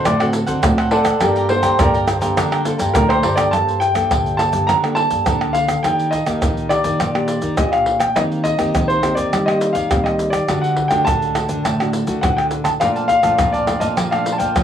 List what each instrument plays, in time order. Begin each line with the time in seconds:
Already playing: nylon-string guitar C4 F#4 A4
0.05 nylon-string guitar A2 D3, cavaquinho D4 A4 C5 F#5, grand piano D5, pandeiro, tamborim, shaker, surdo
0.20 nylon-string guitar C4 F#4 A4, cavaquinho A4 C5 F#5, pandeiro, tamborim, shaker
0.33 muted cavaquinho stroke, pandeiro, shaker
0.46 nylon-string guitar D3 C4 F#4 A4, cavaquinho A4 C5 F#5, pandeiro, shaker, surdo
0.63 nylon-string guitar A2 C4 F#4 A4, pandeiro, tamborim, shaker, surdo
0.78 cavaquinho A4 C5 F#5, pandeiro, tamborim, shaker
0.91 cavaquinho D4 A4 C5 F#5, grand piano A4 D5 F#5 A5, pandeiro
1.05 cavaquinho A4 C5 F#5, pandeiro, tamborim, shaker, surdo
1.20 nylon-string guitar G2 G3 A#3 D4 A4, grand piano G4 A#4 D5 G5, cavaquinho A4 D5 G5 A#5, pandeiro, tamborim, shaker, surdo
1.36 cavaquinho D5 G5 A#5, pandeiro, shaker
1.49 nylon-string guitar A#3 D4 A4, grand piano C5 C6, muted cavaquinho stroke, pandeiro
1.62 nylon-string guitar G2, cavaquinho D5 G5 A#5, pandeiro, tamborim, shaker, surdo
1.79 nylon-string guitar G2 D3 A#3 D4 A4, cavaquinho A4 D5 G5 A#5, grand piano A#4 D5 G5 A#5, pandeiro, tamborim, shaker, surdo
1.94 cavaquinho D5 G5 A#5, pandeiro, shaker
2.08 pandeiro, tamborim, shaker
2.21 nylon-string guitar G2 A#3 D4 A4, cavaquinho D5 G5 A#5, pandeiro, shaker, surdo
2.37 nylon-string guitar D3 G3, cavaquinho A4 D5 G5 A#5, pandeiro, tamborim, shaker, surdo
2.51 cavaquinho D5 G5 A#5, pandeiro, tamborim, shaker
2.65 nylon-string guitar A#3 D4 A4, muted cavaquinho stroke, pandeiro, shaker
2.78 nylon-string guitar G2, cavaquinho D5 G5 A#5, pandeiro, shaker, surdo
2.94 nylon-string guitar A2 D3 A#3 D4 A4, grand piano A#4, pandeiro, tamborim, shaker, surdo
3.09 grand piano C5, cavaquinho D5 G5 A#5, pandeiro, tamborim, shaker
3.23 nylon-string guitar G2, cavaquinho A4 D5 G5 A#5, pandeiro
3.36 nylon-string guitar A#3 D4 A4, grand piano D5, cavaquinho D5 G5 A#5, pandeiro, tamborim, shaker, surdo
3.51 nylon-string guitar G2 G3, grand piano A5, pandeiro, tamborim, shaker, surdo
3.69 pandeiro, shaker
3.80 grand piano G5, pandeiro, shaker
3.95 nylon-string guitar G2 A#3 D4 A4, pandeiro, tamborim, shaker, surdo
4.11 nylon-string guitar G2 D3, pandeiro, tamborim, shaker, surdo
4.26 pandeiro, shaker
4.37 nylon-string guitar A#3 D4 A4, grand piano A5, pandeiro, tamborim, shaker
4.53 nylon-string guitar G2, pandeiro, shaker, surdo
4.67 nylon-string guitar D3 G3, grand piano A#5, pandeiro, tamborim, shaker, surdo
4.84 nylon-string guitar A#3 D4 A4, pandeiro, tamborim, shaker
4.95 grand piano A5, pandeiro
5.10 nylon-string guitar G2, pandeiro, shaker, surdo
5.26 nylon-string guitar D3 A#3 D4 A4, pandeiro, tamborim, shaker, surdo
5.41 pandeiro, tamborim, shaker
5.53 grand piano F5, pandeiro, shaker
5.68 pandeiro, tamborim, shaker, surdo
5.83 nylon-string guitar D#3 A#3 D4 G4, grand piano G5, pandeiro, tamborim, shaker, surdo
5.99 pandeiro, shaker
6.11 grand piano D#5, pandeiro, shaker, surdo
6.26 nylon-string guitar D#3 A#3 G4, pandeiro, tamborim, shaker, surdo
6.42 nylon-string guitar A#2 D#3, pandeiro, tamborim, shaker, surdo
6.57 pandeiro, shaker
6.69 nylon-string guitar A#3 D4 G4, grand piano D5, pandeiro, tamborim, shaker
6.84 nylon-string guitar D#3, pandeiro, shaker, surdo
7.00 nylon-string guitar A#2 D#3, pandeiro, tamborim, shaker, surdo
7.15 nylon-string guitar A#3 D4 G4, pandeiro, tamborim, shaker
7.28 pandeiro, shaker
7.42 nylon-string guitar D#3, pandeiro, shaker, surdo
7.57 nylon-string guitar A#2 A#3 D4 G4, grand piano D#5, pandeiro, tamborim, shaker, surdo
7.72 grand piano F5, pandeiro, tamborim, shaker
7.86 pandeiro
8.00 grand piano G5, pandeiro, tamborim, shaker, surdo
8.16 nylon-string guitar D#3 A#3 C4 G4, grand piano D#5, pandeiro, tamborim, shaker, surdo
8.32 pandeiro, shaker
8.44 grand piano D#5, pandeiro, shaker, surdo
8.58 nylon-string guitar D#3 A#3 C4 G4, pandeiro, tamborim, shaker, surdo
8.74 nylon-string guitar D#3, pandeiro, tamborim, shaker, surdo
8.88 grand piano C5, pandeiro, shaker
9.02 nylon-string guitar A#3 C4 G4, pandeiro, tamborim, shaker
9.15 nylon-string guitar D#3, grand piano D5, pandeiro, shaker, surdo
9.33 nylon-string guitar D#3 G3, pandeiro, tamborim, shaker, surdo
9.46 nylon-string guitar A#3 C4 G4, grand piano D#5, pandeiro, tamborim, shaker
9.61 pandeiro, shaker
9.73 nylon-string guitar D#3, grand piano F5, pandeiro, shaker, surdo
9.91 nylon-string guitar D#3 G3 A#3 C4 G4, pandeiro, tamborim, shaker, surdo
10.04 grand piano D#5, pandeiro, tamborim, shaker
10.19 pandeiro, shaker
10.30 grand piano D5, pandeiro, tamborim, shaker, surdo
10.48 nylon-string guitar D3 A3 D4 F#4, pandeiro, tamborim, shaker, surdo
10.62 grand piano F#5, pandeiro, shaker
10.77 pandeiro, surdo
10.88 nylon-string guitar D3 A3 D4 F#4, grand piano G5, pandeiro, tamborim, shaker, surdo
11.05 nylon-string guitar A2 D3, grand piano A5, pandeiro, tamborim, shaker, surdo
11.22 pandeiro, shaker
11.35 nylon-string guitar A3 D4 F#4, pandeiro, tamborim, shaker
11.49 nylon-string guitar D3, pandeiro, shaker, surdo
11.65 nylon-string guitar A2 D3, pandeiro, tamborim, shaker, surdo
11.80 nylon-string guitar A3 D4 F#4, pandeiro, tamborim, shaker
11.93 pandeiro, shaker
12.07 nylon-string guitar D3 A3 D4 F#4, pandeiro, shaker, surdo
12.21 nylon-string guitar A2 D3 A3 D4 F#4, grand piano F#5, pandeiro, tamborim, shaker, surdo
12.37 grand piano G5, pandeiro, tamborim, shaker
12.51 pandeiro, shaker
12.64 grand piano A5, pandeiro, tamborim, shaker, surdo
12.80 nylon-string guitar A#2 F3 A3 D4, cavaquinho A#4 D5 F5 A5, grand piano F5, pandeiro, tamborim, shaker, surdo
12.96 cavaquinho D5 F5 A5, pandeiro, shaker
13.08 grand piano F5, pandeiro, shaker, surdo
13.23 nylon-string guitar A#2 F3 A3 D4, cavaquinho D5 F5 A5, pandeiro, tamborim, shaker, surdo
13.38 nylon-string guitar F2 A#2, cavaquinho A#4 D5 F5 A5, pandeiro, tamborim, shaker, surdo
13.53 grand piano D5, cavaquinho D5 F5 A5, pandeiro, shaker
13.67 nylon-string guitar F3 A3 D4, pandeiro, tamborim, shaker
13.80 nylon-string guitar A#2, cavaquinho D5 F5 A5, grand piano D#5, pandeiro, shaker, surdo
13.97 nylon-string guitar A#2 F3, cavaquinho A#4 D5 F5 A5, pandeiro, tamborim, shaker, surdo
14.11 nylon-string guitar F3 A3 D4, cavaquinho D5 F5 A5, grand piano F5, pandeiro, tamborim, shaker
14.26 muted cavaquinho stroke, pandeiro, shaker
14.33 grand piano A5
14.38 nylon-string guitar A#2, cavaquinho D5 F5 A5, grand piano G5, pandeiro, shaker, surdo
14.56 nylon-string guitar F2 F3 A3 D4, pandeiro, tamborim, shaker, surdo